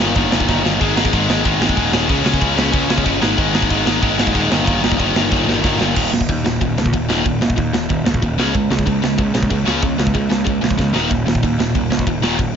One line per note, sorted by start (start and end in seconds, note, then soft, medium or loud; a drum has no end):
0.00 0.15 G1 medium
0.00 0.15 D#2 medium
0.00 0.15 A#2 medium
0.00 0.14 D#3 loud
0.15 0.31 G1 loud
0.15 0.31 D#2 medium
0.15 0.31 A#2 medium
0.15 0.32 D#3 loud
0.15 kick loud
0.15 crash medium
0.32 0.48 G1 medium
0.32 0.48 D#2 medium
0.32 0.47 A#2 medium
0.32 0.47 D#3 medium
0.32 snare loud
0.40 kick medium
0.48 0.63 G1 medium
0.48 0.62 D#2 medium
0.48 0.63 A#2 medium
0.48 0.64 D#3 medium
0.48 kick loud
0.48 snare medium
0.64 0.80 G1 medium
0.64 0.79 D#2 medium
0.64 0.80 A#2 medium
0.64 0.80 D#3 medium
0.64 snare loud
0.81 1.12 G#1 loud
0.81 0.96 G#2 loud
0.81 0.96 D#3 loud
0.81 0.96 G#3 loud
0.81 kick loud
0.81 crash medium
0.96 1.11 G#2 medium
0.96 1.12 D#3 medium
0.96 1.13 G#3 medium
0.96 snare loud
1.05 kick medium
1.12 1.28 G#1 medium
1.12 1.28 G#2 medium
1.12 1.27 D#3 medium
1.12 1.28 G#3 loud
1.12 kick loud
1.12 crash medium
1.28 1.44 G#1 medium
1.28 1.43 G#2 medium
1.28 1.44 D#3 medium
1.28 1.45 G#3 medium
1.28 snare loud
1.44 1.60 G#1 loud
1.44 1.60 G#2 medium
1.44 1.60 D#3 loud
1.44 1.60 G#3 loud
1.44 kick loud
1.44 crash medium
1.60 1.76 G#1 medium
1.60 1.76 G#2 medium
1.60 1.76 D#3 medium
1.60 1.77 G#3 loud
1.60 snare loud
1.69 kick medium
1.77 2.08 D#1 loud
1.77 1.93 G#2 medium
1.77 1.92 D#3 medium
1.77 1.92 G#3 medium
1.77 kick loud
1.77 crash medium
1.93 2.08 G#2 medium
1.93 2.09 D#3 medium
1.93 2.09 G#3 medium
1.93 snare loud
2.09 2.24 C#2 loud
2.09 2.24 C#3 medium
2.09 2.24 G#3 loud
2.09 2.23 C#4 loud
2.09 kick loud
2.09 crash medium
2.24 2.41 C#2 medium
2.24 2.39 C#3 medium
2.24 2.40 G#3 medium
2.24 2.40 C#4 medium
2.24 snare loud
2.34 kick medium
2.40 2.57 C#2 medium
2.40 2.55 C#3 medium
2.40 2.56 G#3 medium
2.40 2.55 C#4 loud
2.40 kick loud
2.40 crash medium
2.56 2.73 C#2 loud
2.56 2.71 C#3 medium
2.56 2.71 G#3 medium
2.56 2.72 C#4 medium
2.56 snare loud
2.72 2.89 C#2 loud
2.72 2.88 C#3 medium
2.72 2.88 G#3 loud
2.72 2.88 C#4 loud
2.72 kick loud
2.72 crash medium
2.89 3.05 C#2 medium
2.89 3.04 C#3 medium
2.89 3.04 G#3 medium
2.89 3.04 C#4 medium
2.89 snare loud
2.98 kick medium
3.05 3.21 G1 medium
3.05 3.21 C#3 medium
3.05 3.20 G#3 medium
3.05 3.21 C#4 loud
3.05 kick loud
3.05 crash medium
3.21 3.37 G#1 medium
3.21 3.37 G#2 loud
3.21 3.37 D#3 loud
3.21 3.36 G#3 loud
3.21 snare loud
3.37 3.69 G#1 loud
3.37 3.52 G#2 medium
3.37 3.53 D#3 loud
3.37 3.53 G#3 loud
3.37 kick loud
3.37 crash medium
3.54 3.70 G#2 medium
3.54 3.70 D#3 medium
3.54 3.69 G#3 loud
3.54 snare loud
3.62 kick medium
3.70 3.86 G#1 loud
3.70 3.85 G#2 medium
3.70 3.86 D#3 medium
3.70 3.86 G#3 medium
3.70 kick loud
3.70 crash medium
3.86 4.02 G#1 loud
3.86 4.02 G#2 medium
3.86 4.01 D#3 medium
3.86 4.01 G#3 medium
3.86 snare loud
4.02 4.18 G#1 loud
4.02 4.17 G#2 medium
4.02 4.17 D#3 loud
4.02 4.18 G#3 loud
4.02 kick loud
4.02 crash medium
4.18 4.34 G#1 medium
4.18 4.34 G#2 medium
4.18 4.33 D#3 medium
4.18 4.33 G#3 loud
4.18 snare loud
4.27 kick medium
4.34 4.50 D#1 medium
4.34 4.50 G#2 medium
4.34 4.50 D#3 medium
4.34 4.50 G#3 medium
4.34 kick loud
4.34 crash medium
4.50 4.66 G1 loud
4.50 4.64 D#2 medium
4.50 4.64 A#2 loud
4.50 4.63 D#3 loud
4.50 snare loud
4.65 4.83 G1 loud
4.65 4.81 D#2 medium
4.65 4.81 A#2 medium
4.65 4.82 D#3 loud
4.65 kick loud
4.65 crash medium
4.82 4.98 G1 medium
4.82 4.98 D#2 medium
4.82 4.98 A#2 medium
4.82 4.97 D#3 medium
4.82 snare loud
4.92 kick medium
4.99 5.14 G1 loud
4.99 5.14 D#2 medium
4.99 5.15 A#2 medium
4.99 5.15 D#3 medium
4.99 kick loud
4.99 crash medium
5.14 5.31 G1 loud
5.14 5.31 D#2 medium
5.14 5.31 A#2 medium
5.14 5.30 D#3 medium
5.14 snare loud
5.31 5.46 G1 loud
5.31 5.46 D#2 loud
5.31 5.46 A#2 loud
5.31 5.46 D#3 loud
5.31 kick loud
5.31 snare medium
5.47 5.63 G1 medium
5.47 5.63 D#2 medium
5.47 5.62 A#2 medium
5.47 5.61 D#3 medium
5.47 snare medium
5.63 5.79 G1 medium
5.63 5.79 D#2 medium
5.63 5.79 A#2 medium
5.63 5.80 D#3 medium
5.63 kick loud
5.63 snare medium
5.80 5.96 G1 medium
5.80 5.95 D#2 medium
5.80 5.95 A#2 medium
5.80 5.95 D#3 loud
5.80 snare loud
5.96 6.11 D#1 medium
5.96 6.11 D#2 medium
5.96 6.11 A#2 medium
5.96 6.12 D#3 medium
5.96 kick loud
5.96 crash loud
5.96 crash medium
6.12 6.27 D#1 medium
6.12 6.27 D#2 medium
6.12 6.27 A#2 medium
6.12 snare loud
6.21 kick medium
6.29 6.43 D#2 loud
6.29 6.43 D#2 medium
6.29 6.44 A#2 medium
6.29 kick medium
6.29 crash medium
6.45 6.59 D#1 loud
6.45 6.59 D#2 medium
6.45 6.59 A#2 medium
6.45 snare loud
6.61 6.75 D#1 loud
6.61 6.76 D#2 medium
6.61 6.76 A#2 medium
6.61 kick loud
6.61 crash medium
6.77 6.92 C#2 medium
6.77 6.92 D#2 medium
6.77 6.92 A#2 medium
6.77 snare loud
6.86 kick medium
6.93 7.08 D#1 medium
6.93 7.07 D#2 medium
6.93 7.08 A#2 medium
6.93 kick loud
6.93 crash medium
7.09 7.24 D#1 medium
7.09 7.24 D#2 medium
7.09 7.24 A#2 medium
7.09 7.25 D#3 loud
7.09 snare loud
7.25 7.40 D#1 medium
7.25 7.40 D#2 medium
7.25 7.40 A#2 medium
7.25 kick loud
7.25 crash medium
7.41 7.56 D#1 medium
7.41 7.55 D#2 medium
7.41 7.56 A#2 medium
7.41 snare loud
7.50 kick medium
7.56 7.72 D#2 medium
7.56 7.72 A#2 medium
7.56 kick loud
7.56 crash medium
7.73 7.89 D#1 medium
7.73 7.88 D#2 medium
7.73 7.88 A#2 medium
7.73 snare loud
7.89 8.04 D#1 medium
7.89 8.04 D#2 medium
7.89 8.04 A#2 medium
7.89 kick loud
7.89 crash medium
8.05 8.21 C#2 medium
8.05 8.20 D#2 medium
8.05 8.21 A#2 medium
8.05 snare loud
8.14 kick medium
8.22 8.37 D#1 medium
8.22 8.37 D#2 medium
8.22 8.37 A#2 medium
8.22 kick loud
8.22 crash medium
8.38 8.53 C#2 medium
8.38 8.53 C#3 medium
8.38 8.53 G#3 loud
8.38 8.54 C#4 loud
8.38 snare loud
8.54 8.69 C#2 medium
8.54 8.69 C#3 medium
8.54 8.69 G#3 medium
8.54 kick loud
8.54 crash medium
8.70 8.85 C#2 medium
8.70 8.84 C#3 medium
8.70 8.85 G#3 medium
8.70 snare loud
8.79 kick medium
8.86 9.01 C#2 medium
8.86 9.01 C#3 medium
8.86 9.01 G#3 medium
8.86 kick medium
8.86 crash medium
9.02 9.17 C#2 medium
9.02 9.16 C#3 medium
9.02 9.17 G#3 medium
9.02 snare loud
9.18 9.33 C#2 medium
9.18 9.33 C#3 medium
9.18 9.33 G#3 medium
9.18 kick loud
9.18 crash medium
9.34 9.49 A#1 medium
9.34 9.49 C#3 medium
9.34 9.49 G#3 medium
9.34 snare loud
9.43 kick medium
9.50 9.65 C#2 medium
9.50 9.64 C#3 medium
9.50 9.65 G#3 medium
9.50 kick loud
9.50 crash medium
9.65 9.81 C#2 medium
9.65 9.81 C#3 medium
9.65 9.82 G#3 loud
9.65 9.82 C#4 medium
9.65 snare loud
9.82 9.97 C#2 medium
9.82 9.97 C#3 medium
9.82 9.97 G#3 medium
9.82 kick loud
9.82 crash medium
9.98 10.13 C#2 medium
9.98 10.13 C#3 medium
9.98 10.13 G#3 medium
9.98 snare loud
10.07 kick medium
10.14 10.29 C#2 medium
10.14 10.28 C#3 medium
10.14 10.28 G#3 medium
10.14 kick loud
10.14 crash medium
10.29 10.45 C#2 medium
10.29 10.43 C#3 medium
10.29 10.43 G#3 medium
10.29 snare loud
10.44 10.61 C#2 medium
10.44 10.60 C#3 medium
10.44 10.60 G#3 medium
10.44 kick loud
10.44 crash medium
10.61 10.76 A#1 medium
10.61 10.77 C#3 medium
10.61 10.77 G#3 medium
10.61 snare loud
10.71 kick medium
10.78 10.92 C#2 medium
10.78 10.93 C#3 medium
10.78 10.93 G#3 medium
10.78 kick loud
10.78 snare medium
10.93 11.08 D#1 medium
10.93 11.08 D#2 medium
10.93 11.09 A#2 medium
10.93 11.10 D#3 loud
10.93 snare medium
11.10 11.25 D#1 medium
11.10 11.25 D#2 medium
11.10 11.25 A#2 medium
11.10 kick loud
11.10 crash medium
11.26 11.41 D#1 medium
11.26 11.41 D#2 medium
11.26 11.41 A#2 medium
11.26 snare loud
11.35 kick medium
11.43 11.57 D#2 medium
11.43 11.57 A#2 medium
11.43 kick medium
11.43 crash medium
11.58 11.73 D#1 medium
11.58 11.73 D#2 medium
11.58 11.74 A#2 medium
11.58 snare loud
11.75 11.89 D#1 medium
11.75 11.89 D#2 medium
11.75 11.89 A#2 medium
11.75 kick loud
11.75 crash medium
11.89 12.04 C#2 medium
11.89 12.05 D#2 medium
11.89 12.05 A#2 medium
11.89 snare loud
11.99 kick medium
12.07 12.21 D#1 medium
12.07 12.21 D#2 medium
12.07 12.21 A#2 medium
12.07 kick medium
12.07 crash medium
12.21 12.36 D#1 medium
12.21 12.38 D#2 medium
12.21 12.38 A#2 loud
12.21 12.38 D#3 loud
12.21 snare loud
12.39 12.53 D#1 medium
12.39 12.53 D#2 medium
12.39 12.54 A#2 medium
12.39 kick loud
12.39 crash medium